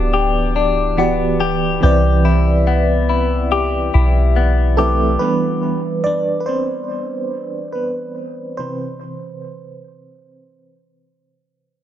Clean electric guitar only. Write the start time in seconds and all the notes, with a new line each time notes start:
Already playing: E3 B3 D4 G4
0.14 G4
0.56 D4
0.98 B3
1.40 G4
1.83 G4
2.25 E4
2.67 B3
3.09 E4
3.52 G4
3.94 E4
4.36 B3
4.78 G4